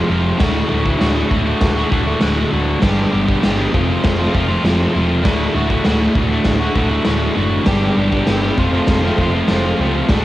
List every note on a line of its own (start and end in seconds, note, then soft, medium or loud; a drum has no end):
0.00 0.37 F2 medium
0.00 0.38 C3 medium
0.08 0.31 F1 medium
0.08 0.38 F3 medium
0.08 0.38 A3 medium
0.08 0.39 C4 medium
0.08 0.39 F4 medium
0.38 0.61 D1 medium
0.38 0.97 D2 medium
0.38 0.66 A2 loud
0.38 0.67 D3 loud
0.38 0.69 A3 loud
0.38 0.69 F#4 loud
0.38 kick loud
0.38 snare loud
0.38 crash medium
0.68 0.92 D1 medium
0.68 0.98 A2 medium
0.68 0.84 D3 medium
0.68 0.83 A3 medium
0.68 0.81 F#4 medium
0.83 0.98 D3 medium
0.83 0.99 A3 medium
0.83 1.00 F#4 medium
0.83 kick medium
0.98 1.22 D1 loud
0.98 1.45 D2 loud
0.98 1.28 A2 medium
0.98 1.16 D3 loud
0.98 1.15 A3 loud
0.98 1.13 F#4 loud
0.98 snare loud
0.98 crash medium
1.14 1.29 D3 medium
1.14 1.30 A3 medium
1.14 1.30 F#4 medium
1.29 1.52 D1 loud
1.29 1.76 A2 medium
1.29 1.47 D3 medium
1.29 1.45 A3 medium
1.29 1.44 F#4 medium
1.29 kick medium
1.45 1.77 D3 medium
1.45 1.76 A3 medium
1.45 1.74 F#4 medium
1.61 1.83 D1 loud
1.61 kick loud
1.61 snare loud
1.61 crash medium
1.76 1.89 D3 medium
1.76 1.90 A3 medium
1.76 1.91 F#4 medium
1.89 2.13 D1 loud
1.89 2.19 A2 medium
1.89 2.07 D3 medium
1.89 2.06 A3 medium
1.89 2.04 F#4 medium
1.89 kick medium
2.05 2.20 D3 medium
2.05 2.21 A3 medium
2.05 2.21 F#4 medium
2.19 2.43 D1 loud
2.19 2.80 D2 loud
2.19 2.49 A2 medium
2.19 2.50 D3 loud
2.19 2.51 A3 loud
2.19 2.52 F#4 loud
2.19 snare loud
2.19 crash medium
2.51 2.73 D1 loud
2.51 2.80 A2 medium
2.51 2.79 D3 medium
2.51 2.81 A3 medium
2.51 2.82 F#4 medium
2.80 3.04 G1 loud
2.80 3.41 G2 loud
2.80 3.42 D3 loud
2.80 3.10 G3 loud
2.80 3.11 B3 loud
2.80 3.12 D4 loud
2.80 3.12 G4 loud
2.80 kick loud
2.80 snare loud
2.80 crash medium
3.11 3.34 G1 loud
3.11 3.29 G3 medium
3.11 3.28 B3 medium
3.11 3.27 D4 medium
3.11 3.26 G4 loud
3.27 3.42 G3 medium
3.27 3.43 B3 medium
3.27 3.43 D4 medium
3.27 3.44 G4 medium
3.27 kick medium
3.42 3.65 G1 loud
3.42 3.72 G2 loud
3.42 3.72 D3 medium
3.42 3.58 G3 loud
3.42 3.57 B3 loud
3.42 3.56 D4 medium
3.42 3.56 G4 loud
3.42 snare loud
3.42 crash medium
3.57 3.73 G3 medium
3.57 3.72 B3 medium
3.57 3.72 D4 medium
3.57 3.72 G4 medium
3.72 3.95 F1 medium
3.72 4.19 F2 loud
3.72 4.19 C3 loud
3.72 3.90 F3 loud
3.72 3.89 A3 loud
3.72 3.88 C4 loud
3.72 3.87 F4 loud
3.72 kick medium
3.88 4.20 F3 medium
3.88 4.19 A3 medium
3.88 4.18 C4 medium
3.88 4.17 F4 medium
4.04 4.25 F1 loud
4.04 kick loud
4.04 snare loud
4.04 crash medium
4.18 4.32 F3 medium
4.18 4.33 A3 medium
4.18 4.33 C4 medium
4.18 4.34 F4 medium
4.33 4.55 F1 loud
4.33 4.49 F3 medium
4.33 4.49 A3 medium
4.33 4.48 C4 medium
4.33 4.47 F4 medium
4.33 kick medium
4.48 4.63 F3 medium
4.48 4.63 A3 medium
4.48 4.65 C4 medium
4.48 4.65 F4 medium
4.63 4.85 F1 medium
4.63 5.23 F2 medium
4.63 5.23 C3 loud
4.63 4.92 F3 loud
4.63 4.94 A3 medium
4.63 4.94 C4 loud
4.63 4.95 F4 loud
4.63 snare loud
4.63 crash medium
4.94 5.25 E1 medium
4.94 5.23 F3 medium
4.94 5.24 A3 medium
4.94 5.24 C4 medium
4.94 5.25 F4 medium
5.23 5.46 D1 loud
5.23 5.83 D2 loud
5.23 5.52 A2 loud
5.23 5.53 D3 loud
5.23 5.55 A3 loud
5.23 5.55 F#4 medium
5.23 kick loud
5.23 snare loud
5.23 crash medium
5.53 5.76 D1 loud
5.53 5.85 A2 medium
5.53 5.72 D3 medium
5.53 5.70 A3 medium
5.53 5.68 F#4 medium
5.70 5.85 D3 medium
5.70 5.86 A3 medium
5.70 5.87 F#4 medium
5.70 kick medium
5.85 6.07 D1 medium
5.85 6.31 D2 medium
5.85 6.14 A2 medium
5.85 6.02 D3 medium
5.85 6.01 A3 medium
5.85 5.99 F#4 loud
5.85 snare loud
5.85 crash medium
6.00 6.15 D3 medium
6.00 6.16 A3 medium
6.00 6.17 F#4 medium
6.15 6.37 D1 medium
6.15 6.62 A2 medium
6.15 6.31 D3 medium
6.15 6.30 A3 medium
6.15 6.29 F#4 medium
6.15 kick medium
6.30 6.61 D3 medium
6.30 6.60 A3 medium
6.30 6.59 F#4 medium
6.45 6.66 D1 medium
6.45 kick loud
6.45 snare loud
6.45 crash medium
6.60 6.75 D3 medium
6.60 6.76 A3 medium
6.60 6.77 F#4 medium
6.75 6.97 D1 loud
6.75 7.04 A2 medium
6.75 6.92 D3 medium
6.75 6.90 A3 medium
6.75 6.89 F#4 medium
6.75 kick medium
6.90 7.05 D3 medium
6.90 7.05 A3 medium
6.90 7.06 F#4 medium
7.05 7.28 D1 loud
7.05 7.64 D2 medium
7.05 7.34 A2 medium
7.05 7.35 D3 loud
7.05 7.36 A3 medium
7.05 7.36 F#4 loud
7.05 snare loud
7.05 crash medium
7.35 7.58 F#1 loud
7.35 7.64 A2 medium
7.35 7.63 D3 medium
7.35 7.66 A3 medium
7.35 7.66 F#4 medium
7.65 7.88 G1 loud
7.65 8.25 G2 medium
7.65 8.26 D3 medium
7.65 7.95 G3 medium
7.65 7.96 B3 loud
7.65 7.97 D4 loud
7.65 8.18 G4 medium
7.65 7.98 G4 loud
7.65 8.18 B4 medium
7.65 8.18 D5 medium
7.65 kick loud
7.65 snare loud
7.65 crash medium
7.96 8.18 G1 medium
7.96 8.12 G3 medium
7.96 8.10 B3 medium
7.96 8.10 D4 medium
7.96 8.09 G4 medium
8.10 8.27 G3 medium
8.10 8.27 B3 medium
8.10 8.27 D4 medium
8.10 8.28 G4 medium
8.10 kick medium
8.27 8.49 G1 medium
8.27 8.56 G2 medium
8.27 8.57 D3 loud
8.27 8.44 G3 medium
8.27 8.43 B3 loud
8.27 8.42 D4 medium
8.27 8.41 G4 loud
8.27 8.59 G4 medium
8.27 8.59 B4 medium
8.27 snare loud
8.27 crash medium
8.31 8.60 E5 medium
8.42 8.58 G3 medium
8.42 8.57 B3 medium
8.42 8.57 D4 medium
8.42 8.57 G4 medium
8.57 8.79 F1 loud
8.57 9.03 F2 loud
8.57 9.04 C3 loud
8.57 8.74 F3 loud
8.57 8.73 A3 loud
8.57 8.72 C4 loud
8.57 9.34 F4 medium
8.57 8.71 F4 loud
8.57 9.34 A4 medium
8.57 9.34 C5 loud
8.57 kick medium
8.72 9.04 F3 medium
8.72 9.04 A3 medium
8.72 9.03 C4 medium
8.72 9.01 F4 medium
8.87 9.09 F1 loud
8.87 kick loud
8.87 snare loud
8.87 crash medium
9.03 9.17 F3 medium
9.03 9.17 A3 medium
9.03 9.19 C4 medium
9.03 9.20 F4 medium
9.18 9.39 F1 loud
9.18 9.35 F3 medium
9.18 9.34 A3 medium
9.18 9.33 C4 medium
9.18 9.32 F4 medium
9.18 kick medium
9.33 9.49 F3 medium
9.33 9.50 A3 medium
9.33 9.50 C4 medium
9.33 9.51 F4 medium
9.48 9.71 F1 loud
9.48 10.08 F2 medium
9.48 10.09 C3 medium
9.48 9.78 F3 loud
9.48 9.79 A3 medium
9.48 9.80 C4 loud
9.48 10.00 F4 loud
9.48 9.81 F4 loud
9.48 10.00 A4 medium
9.48 10.00 C5 loud
9.48 snare loud
9.48 crash medium
9.79 10.00 C#2 loud
9.79 10.08 F3 medium
9.79 10.09 A3 medium
9.79 10.09 C4 medium
9.79 10.10 F4 medium
10.09 10.25 D1 loud
10.09 10.25 D2 loud
10.09 10.25 A2 loud
10.09 10.25 D3 loud
10.09 10.25 A3 loud
10.09 10.25 F#4 medium
10.09 10.25 F#4 loud
10.09 10.25 A4 medium
10.09 10.25 D5 loud
10.09 kick loud
10.09 snare loud
10.09 crash medium